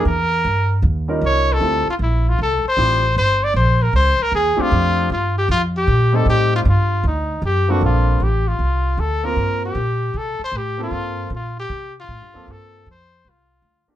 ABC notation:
X:1
M:4/4
L:1/8
Q:"Swing" 1/4=155
K:Gdor
V:1 name="Trumpet"
B4 z2 _d A- | A F E F A c3 | c d c B c B _A F- | F2 F G F G2 A |
G F F2 _E2 G ^F | F2 G F3 A B- | B G3 A c G F- | F2 F G2 F3 |
A2 c2 F3 z |]
V:2 name="Grand piano"
z4 z [G,_D_EFB]3 | [G,CEFA] z4 z [G,CEFG] z | z6 z [F,A,CDG]- | [F,A,CDG]2 z4 z [G,A,C_EG]- |
[G,A,C_EG]2 z4 z [G,,F,B,CDA]- | [G,,F,B,CDA]2 z4 z [B,CFB]- | [B,CFB]2 z4 z [B,CFA]- | [B,CFA]2 z4 z [B,CFA]- |
[B,CFA]2 z4 z [B,DFG] |]
V:3 name="Upright bass" clef=bass
E,,2 G,,2 _E,,2 C,,2 | D,, z B,,,2 C,, z A,,,2 | G,,,2 B,,,2 _D,, z _E,, z | F,,2 G,,2 F,,2 B,,2 |
A,,2 G,,2 D,,2 ^F,,2 | B,,,2 A,,,2 C,,2 D,,2 | G,,2 B,,2 C, z A,,2 | G,,2 B,,2 C,2 (3A,, G,, F,, |
G,,2 F,,2 C,,2 D,, z |]